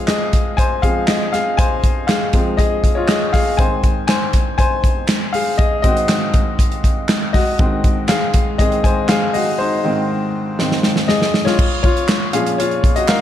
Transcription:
Already playing: F3 G#3 C4 G#4 F5
0.07 G#4 D#5, snare, clap, closed hi-hat
0.33 kick, closed hi-hat
0.57 C5 G#5, kick, closed hi-hat
0.82 F3 G#3 C4 G#4 F5, kick, closed hi-hat
1.07 G#4 D#5, snare, clap, closed hi-hat
1.33 G#4 F5, snare, closed hi-hat
1.57 C5 G#5, kick, closed hi-hat
1.84 kick, closed hi-hat
2.07 G#4 F5, snare, clap, closed hi-hat
2.33 F3 G#3 C4, kick, closed hi-hat
2.57 G#4 D#5, kick, closed hi-hat
2.84 kick, closed hi-hat
2.95 F4 C#5
3.08 G#4 D#5, snare, clap, closed hi-hat
3.33 G#4 F5, kick, snare, open hi-hat
3.57 G#2 D#3 C4 C5 G#5, kick, closed hi-hat
3.84 kick, closed hi-hat
4.07 C5 G#5, snare, clap, closed hi-hat
4.33 kick, closed hi-hat
4.58 C5 G#5, kick, closed hi-hat
4.84 kick, closed hi-hat
5.08 snare, clap, closed hi-hat
5.33 G#4 F5, open hi-hat
5.58 G#4 D#5, kick, closed hi-hat
5.82 G#2 D#3 C4 F#4 D#5, kick, closed hi-hat
5.97 closed hi-hat
6.09 snare, clap, closed hi-hat
6.34 kick, closed hi-hat
6.59 kick, closed hi-hat
6.72 closed hi-hat
6.84 kick, closed hi-hat
7.09 snare, clap, closed hi-hat
7.33 F#4 D#5, kick, snare, open hi-hat
7.59 G#2 D#3 C4, kick, closed hi-hat
7.84 kick, closed hi-hat
8.08 G#4 F5, snare, clap, closed hi-hat
8.34 kick, closed hi-hat
8.58 G#2 D#3 C4 G#4 D#5, kick, closed hi-hat
8.72 closed hi-hat
8.84 C5 G#5, kick, closed hi-hat
9.09 G#4 F5, snare, clap, closed hi-hat
9.33 F#4 D#5, open hi-hat
9.59 D#4 C5
9.84 G#2 D#3 C4
10.59 G#2 D#3 C4, snare
10.71 snare
10.83 snare
10.96 snare
11.08 G#4 D#5, snare
11.22 snare
11.34 snare
11.45 F4 C#5, snare
11.59 kick, crash
11.83 F4 C#5, kick, closed hi-hat
11.97 closed hi-hat
12.09 snare, clap
12.33 A#2 F3 C#4 G#4 F5, closed hi-hat
12.46 closed hi-hat
12.58 F4 C#5, closed hi-hat
12.71 closed hi-hat
12.84 kick, closed hi-hat
12.96 F#4 D#5, closed hi-hat
13.08 A#4 F5, snare, clap

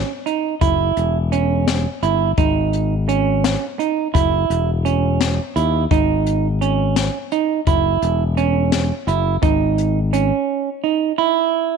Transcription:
Already playing: C#4
0.26 D#4, closed hi-hat
0.61 F#1 E4, kick, closed hi-hat
0.97 E1, closed hi-hat
1.32 C#4, closed hi-hat
1.68 snare, closed hi-hat
2.02 G1 E4, closed hi-hat
2.37 G#1 D#4, kick, closed hi-hat
2.73 closed hi-hat
3.09 C#4, closed hi-hat
3.44 snare, closed hi-hat
3.79 D#4, closed hi-hat
4.14 F#1 E4, kick, closed hi-hat
4.50 E1, closed hi-hat
4.85 C#4, closed hi-hat
5.21 snare, closed hi-hat
5.56 D#2 E4, closed hi-hat
5.91 G#1 D#4, kick, closed hi-hat
6.26 closed hi-hat
6.61 C#4, closed hi-hat
6.96 snare, closed hi-hat
7.32 D#4, closed hi-hat
7.67 F#1 E4, kick, closed hi-hat
8.02 E1, closed hi-hat
8.37 C#4, closed hi-hat
8.72 snare, closed hi-hat
9.07 F#1 E4, closed hi-hat
9.42 G#1 D#4, kick, closed hi-hat
9.78 closed hi-hat
10.13 C#4, closed hi-hat
10.84 D#4
11.18 E4

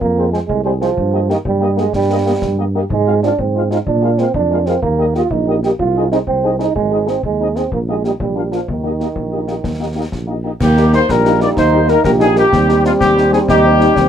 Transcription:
0.01 F2 A#3, concert bass drum
0.17 G#3 C4 G#4 C5
0.32 G#3 C4 G#4 C5, snare
0.48 C2 G#3, concert bass drum
0.63 G3 G#3 C4 G#4 C5
0.80 F3 G#3 C4 G#4 C5, snare
0.98 G2, concert bass drum
1.13 A#3 G4 D#5
1.29 D#3 A#3 G4 D#5, snare
1.45 G2 G3, concert bass drum
1.60 A#3 G4 D#5
1.77 G#3 A#3 G4 D#5, snare
1.93 G2 G3, concert bass drum, snare
2.10 A#3 G4 D#5
2.25 A#3 G4 D#5
2.42 G2, concert bass drum, snare
2.57 A#3 G4 D#5
2.74 A#3 G4 D#5
2.90 G#2 G#3, concert bass drum
3.06 G#3 C4 F4 F5
3.23 G#3 C4 D4 F4 F5, snare
3.38 G#2 C4, concert bass drum
3.55 G#3 C4 F4 F5
3.71 G#3 C4 D#4 F4 F5, snare
3.87 A#2 D4, concert bass drum
4.02 G#3 A#3 F4 F5
4.18 G#3 A#3 C4 F4 F5, snare
4.34 F2 D4, concert bass drum
4.51 G#3 A#3 F4 F5
4.66 G#3 A#3 C4 F4 F5, snare
4.82 D#2 A#3, concert bass drum
4.98 G3 A#3 G4 D#5
5.15 G3 A#3 F4 G4 D#5, snare
5.31 A#1 D#4, concert bass drum
5.48 G3 A#3 G4 D#5
5.63 G3 A#3 G4 D#5, snare
5.79 C2 F4, concert bass drum
5.95 C4 D#4 G#4 D#5
6.11 C4 D#4 G#4 D#5, snare
6.27 C2 C4, concert bass drum
6.44 C4 D#4 G#4 D#5
6.59 C4 D#4 G#4 D#5, snare
6.76 G#1 G#3, concert bass drum
6.91 C4 D#4 G#4 D#5
7.07 C4 D#4 G#4 D#5, snare
7.23 D#2 G#3, concert bass drum
7.40 C4 D#4 G#4 D#5
7.56 C4 D#4 G#4 D#5, snare
7.72 A#1 A#3, concert bass drum
7.88 G#3 A#3 D#4 G4 D#5
8.04 G3 A#3 D#4 G4 D#5, snare
8.20 A#1 G3, concert bass drum
8.36 A#3 D4 F4 F5
8.52 F3 A#3 D4 F4 F5, snare
8.68 D#2 D#3, concert bass drum
8.84 A#3 D#4 G4 D#5
9.00 A#3 D#4 G4 D#5, snare
9.16 A#1, concert bass drum
9.32 A#3 D#4 G4 D#5
9.48 A#3 D#4 G4 D#5, snare
9.64 D#2, concert bass drum, snare
9.80 A#3 D#4 G4 D#5
9.96 A#3 D#4 G4 D#5
10.12 A#1, concert bass drum, snare
10.27 A#3 D#4 G4 D#5
10.44 A#3 D#4 G4 D#5
10.60 D#2 A#3 D#4 G4, concert bass drum, snare, crash
10.77 G3 A#3 D#4, snare
10.93 G3 A#3 D#4 C5, snare
11.08 A#1 G3 A#4, concert bass drum, snare
11.25 G3 A#3 D#4, snare
11.41 G3 A#3 D#4 D5, snare
11.57 D#2 D#4 C5, concert bass drum, snare
11.73 G3 A#3 D#4
11.88 G3 A#3 D#4 A#4, snare
12.03 A#1 G4 A#4, concert bass drum, snare
12.19 G3 A#3 D#4 G#4, snare
12.35 G3 A#3 D#4 G4, snare
12.52 D#2 G3 C4, concert bass drum, snare
12.68 G3 C4 D#4, snare
12.84 G3 C4 D#4 F4, snare
12.98 D#2 G4, concert bass drum, snare
13.16 G3 C4 D#4, snare
13.31 G3 C4 D#4 G#4, snare
13.47 D#2 D#4 G4, concert bass drum, snare
13.64 G3 C4 D#4
13.80 G3 C4 D#4, snare
13.96 D#2 C4, concert bass drum, snare

